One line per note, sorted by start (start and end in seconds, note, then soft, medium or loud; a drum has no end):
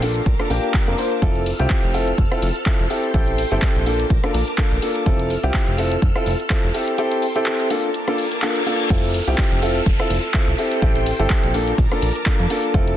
0.00 0.21 A#1 medium
0.00 0.19 A#3 medium
0.00 0.19 D4 medium
0.00 0.19 F4 medium
0.00 0.19 A4 medium
0.00 1.21 A#4 medium
0.00 1.21 A5 medium
0.00 1.21 D6 medium
0.00 open hi-hat loud
0.16 closed hi-hat soft
0.26 0.35 A#1 medium
0.26 kick loud
0.26 closed hi-hat medium
0.39 0.48 A#3 medium
0.39 0.48 D4 medium
0.39 0.48 F4 medium
0.39 0.48 A4 loud
0.39 cross-stick medium
0.39 closed hi-hat soft
0.50 0.60 A#1 medium
0.50 0.84 A#3 loud
0.50 0.84 D4 medium
0.50 0.84 F4 medium
0.50 0.84 G4 loud
0.50 open hi-hat loud
0.64 closed hi-hat soft
0.74 kick loud
0.74 clap loud
0.74 open hi-hat medium
0.87 0.95 F2 medium
0.87 0.96 A#3 medium
0.87 0.96 D4 medium
0.87 0.96 F4 medium
0.87 0.96 A#4 medium
0.87 closed hi-hat soft
0.98 1.19 A#3 medium
0.98 1.19 D4 medium
0.98 1.19 F4 medium
0.98 1.19 C5 medium
0.98 open hi-hat loud
1.12 closed hi-hat soft
1.22 1.53 F1 loud
1.22 1.48 C4 medium
1.22 1.48 E4 medium
1.22 1.48 F4 medium
1.22 3.84 A4 medium
1.22 1.48 A4 loud
1.22 2.89 E6 medium
1.22 2.89 F6 medium
1.22 kick loud
1.22 closed hi-hat medium
1.35 closed hi-hat soft
1.46 open hi-hat loud
1.59 1.67 C2 loud
1.59 1.92 C4 medium
1.59 1.92 E4 medium
1.59 1.92 F4 medium
1.59 1.92 G4 loud
1.59 closed hi-hat soft
1.70 kick loud
1.70 clap loud
1.70 closed hi-hat medium
1.84 2.13 F1 loud
1.84 closed hi-hat soft
1.94 2.11 C4 medium
1.94 2.11 E4 medium
1.94 2.11 F4 medium
1.94 2.11 A4 medium
1.94 open hi-hat loud
2.08 closed hi-hat soft
2.18 2.28 F1 loud
2.18 kick loud
2.18 closed hi-hat medium
2.31 2.47 C4 medium
2.31 2.47 E4 medium
2.31 2.47 F4 medium
2.31 2.47 A4 medium
2.31 cross-stick medium
2.31 closed hi-hat soft
2.42 2.52 F1 medium
2.42 open hi-hat loud
2.56 closed hi-hat soft
2.66 2.83 C4 medium
2.66 2.83 E4 medium
2.66 2.83 F4 medium
2.66 2.83 A4 medium
2.66 kick loud
2.66 clap loud
2.66 closed hi-hat medium
2.80 2.87 F1 medium
2.80 closed hi-hat soft
2.90 3.11 C4 medium
2.90 3.11 E4 medium
2.90 3.11 G4 medium
2.90 3.11 A4 medium
2.90 3.85 G5 medium
2.90 3.85 C6 medium
2.90 open hi-hat loud
3.04 closed hi-hat soft
3.14 3.45 A1 loud
3.14 3.40 C4 loud
3.14 3.40 E4 medium
3.14 3.40 G4 medium
3.14 3.40 A4 loud
3.14 kick loud
3.14 closed hi-hat medium
3.28 closed hi-hat soft
3.38 open hi-hat loud
3.51 3.59 G1 loud
3.51 3.84 C4 medium
3.51 3.84 E4 medium
3.51 3.84 G4 medium
3.51 3.84 A4 loud
3.51 closed hi-hat soft
3.62 kick loud
3.62 clap loud
3.62 closed hi-hat medium
3.76 4.05 A#1 medium
3.76 closed hi-hat soft
3.86 4.03 A#3 medium
3.86 4.03 D4 medium
3.86 4.03 F4 medium
3.86 4.03 A4 medium
3.86 5.05 A#4 medium
3.86 5.05 A5 medium
3.86 5.05 D6 medium
3.86 open hi-hat loud
4.00 closed hi-hat soft
4.10 4.20 A#1 medium
4.10 kick loud
4.10 closed hi-hat medium
4.23 4.39 A#3 medium
4.23 4.39 D4 medium
4.23 4.39 F4 medium
4.23 4.39 A4 medium
4.23 cross-stick medium
4.23 closed hi-hat soft
4.34 4.44 A#1 medium
4.34 open hi-hat loud
4.48 closed hi-hat soft
4.58 4.75 A#3 medium
4.58 4.75 D4 medium
4.58 4.75 F4 medium
4.58 4.75 A4 medium
4.58 kick loud
4.58 clap loud
4.58 open hi-hat medium
4.72 4.79 A#1 medium
4.72 closed hi-hat soft
4.82 5.03 A#3 medium
4.82 5.03 D4 medium
4.82 5.03 F4 medium
4.82 5.03 A4 medium
4.82 open hi-hat loud
4.96 closed hi-hat soft
5.06 5.37 F1 loud
5.06 5.32 C4 medium
5.06 5.32 E4 medium
5.06 5.32 F4 medium
5.06 5.32 A4 loud
5.06 7.68 A4 medium
5.06 6.73 E6 medium
5.06 6.73 F6 medium
5.06 kick loud
5.06 closed hi-hat medium
5.19 closed hi-hat soft
5.30 open hi-hat loud
5.43 5.51 C2 loud
5.43 5.76 C4 medium
5.43 5.76 E4 medium
5.43 5.76 F4 medium
5.43 5.76 G4 loud
5.43 closed hi-hat soft
5.54 kick loud
5.54 clap loud
5.54 closed hi-hat medium
5.68 5.97 F1 medium
5.68 closed hi-hat soft
5.78 5.95 C4 medium
5.78 5.95 E4 medium
5.78 5.95 F4 medium
5.78 5.95 A4 loud
5.78 open hi-hat loud
5.92 closed hi-hat soft
6.02 6.12 F1 medium
6.02 kick loud
6.02 closed hi-hat medium
6.16 6.31 C4 medium
6.16 6.31 E4 medium
6.16 6.31 F4 medium
6.16 6.31 A4 medium
6.16 cross-stick medium
6.16 closed hi-hat soft
6.26 6.36 F1 medium
6.26 open hi-hat loud
6.40 closed hi-hat soft
6.50 6.67 C4 medium
6.50 6.67 E4 medium
6.50 6.67 F4 medium
6.50 6.67 A4 medium
6.50 kick loud
6.50 clap loud
6.50 closed hi-hat medium
6.64 6.71 F1 medium
6.64 closed hi-hat soft
6.74 6.95 C4 medium
6.74 6.95 E4 medium
6.74 6.95 G4 medium
6.74 6.95 A4 medium
6.74 7.69 G5 medium
6.74 7.69 C6 medium
6.74 open hi-hat loud
6.88 closed hi-hat soft
6.98 7.24 C4 loud
6.98 7.24 E4 medium
6.98 7.24 G4 medium
6.98 7.24 A4 loud
6.98 closed hi-hat medium
7.12 closed hi-hat soft
7.22 open hi-hat loud
7.36 7.68 C4 medium
7.36 7.68 E4 medium
7.36 7.68 G4 medium
7.36 7.68 A4 loud
7.36 closed hi-hat soft
7.46 clap loud
7.46 closed hi-hat medium
7.60 closed hi-hat soft
7.70 7.87 A#3 medium
7.70 7.87 D4 medium
7.70 7.87 F4 medium
7.70 7.87 A4 loud
7.70 8.89 A#4 medium
7.70 8.89 A5 medium
7.70 8.89 D6 medium
7.70 open hi-hat loud
7.84 closed hi-hat soft
7.94 closed hi-hat medium
7.94 reverse cymbal medium
8.08 8.23 A#3 medium
8.08 8.23 D4 medium
8.08 8.23 F4 medium
8.08 8.23 A4 medium
8.08 cross-stick medium
8.08 closed hi-hat soft
8.18 open hi-hat loud
8.32 closed hi-hat soft
8.42 8.59 A#3 medium
8.42 8.59 D4 medium
8.42 8.59 F4 medium
8.42 8.59 A4 medium
8.42 clap loud
8.42 open hi-hat medium
8.56 closed hi-hat soft
8.66 8.87 A#3 medium
8.66 8.87 D4 medium
8.66 8.87 F4 medium
8.66 8.87 A4 medium
8.66 open hi-hat loud
8.80 closed hi-hat soft
8.90 9.21 F1 loud
8.90 9.16 C4 medium
8.90 9.16 E4 medium
8.90 9.16 F4 medium
8.90 11.52 A4 medium
8.90 9.16 A4 loud
8.90 10.57 E6 medium
8.90 10.57 F6 medium
8.90 kick loud
8.90 closed hi-hat medium
8.90 crash loud
8.90 downlifter medium
8.90 shaker soft
9.04 closed hi-hat soft
9.14 open hi-hat loud
9.14 shaker medium
9.28 9.35 C2 loud
9.28 9.60 C4 medium
9.28 9.60 E4 medium
9.28 9.60 F4 medium
9.28 9.60 G4 loud
9.28 closed hi-hat soft
9.28 shaker soft
9.38 kick loud
9.38 clap loud
9.38 closed hi-hat medium
9.38 shaker soft
9.52 9.81 F1 medium
9.52 closed hi-hat soft
9.62 9.79 C4 medium
9.62 9.79 E4 medium
9.62 9.79 F4 medium
9.62 9.79 A4 medium
9.62 open hi-hat loud
9.62 shaker medium
9.76 closed hi-hat soft
9.76 shaker soft
9.86 9.96 F1 loud
9.86 kick loud
9.86 closed hi-hat medium
9.86 shaker soft
10.00 10.15 C4 medium
10.00 10.15 E4 medium
10.00 10.15 F4 medium
10.00 10.15 A4 loud
10.00 cross-stick medium
10.00 closed hi-hat soft
10.10 10.20 F1 medium
10.10 open hi-hat loud
10.10 shaker medium
10.24 closed hi-hat soft
10.24 shaker soft
10.34 10.51 C4 medium
10.34 10.51 E4 medium
10.34 10.51 F4 medium
10.34 10.51 A4 medium
10.34 kick loud
10.34 clap loud
10.34 closed hi-hat medium
10.34 shaker soft
10.47 10.55 C2 medium
10.47 closed hi-hat soft
10.58 10.79 C4 medium
10.58 10.79 E4 medium
10.58 10.79 G4 medium
10.58 10.79 A4 medium
10.58 11.53 G5 medium
10.58 11.53 C6 medium
10.58 open hi-hat loud
10.58 shaker medium
10.72 closed hi-hat soft
10.72 shaker soft
10.82 11.13 A1 loud
10.82 11.08 C4 loud
10.82 11.08 E4 medium
10.82 11.08 G4 medium
10.82 11.08 A4 loud
10.82 kick loud
10.82 closed hi-hat medium
10.82 shaker soft
10.96 closed hi-hat soft
11.06 open hi-hat loud
11.06 shaker medium
11.19 11.27 G1 loud
11.19 11.52 C4 medium
11.19 11.52 E4 medium
11.19 11.52 G4 medium
11.19 11.52 A4 loud
11.19 closed hi-hat soft
11.19 shaker soft
11.30 kick loud
11.30 clap loud
11.30 closed hi-hat medium
11.30 shaker soft
11.43 11.73 A#1 medium
11.43 closed hi-hat soft
11.54 11.71 A#3 medium
11.54 11.71 D4 medium
11.54 11.71 F4 medium
11.54 11.71 A4 medium
11.54 12.73 A#4 medium
11.54 12.73 A5 medium
11.54 12.73 D6 medium
11.54 open hi-hat loud
11.54 shaker medium
11.68 closed hi-hat soft
11.68 shaker soft
11.78 11.88 A#1 loud
11.78 kick loud
11.78 closed hi-hat medium
11.78 shaker soft
11.92 12.07 A#3 medium
11.92 12.07 D4 medium
11.92 12.07 F4 medium
11.92 12.07 A4 loud
11.92 cross-stick medium
11.92 closed hi-hat soft
12.02 12.11 A#1 medium
12.02 open hi-hat loud
12.02 shaker medium
12.16 closed hi-hat soft
12.16 shaker soft
12.26 12.43 A#3 medium
12.26 12.43 D4 medium
12.26 12.43 F4 medium
12.26 12.43 A4 medium
12.26 kick loud
12.26 clap loud
12.26 open hi-hat medium
12.26 shaker soft
12.39 12.47 F2 medium
12.39 closed hi-hat soft
12.50 12.71 A#3 medium
12.50 12.71 D4 medium
12.50 12.71 F4 medium
12.50 12.71 A4 medium
12.50 open hi-hat loud
12.50 shaker medium
12.63 closed hi-hat soft
12.63 shaker soft
12.74 12.97 F1 loud
12.74 12.97 C4 loud
12.74 12.97 E4 medium
12.74 12.97 F4 medium
12.74 12.97 A4 loud
12.74 12.97 A4 medium
12.74 12.97 E6 medium
12.74 12.97 F6 medium
12.74 kick loud
12.74 closed hi-hat medium
12.74 shaker soft
12.88 closed hi-hat soft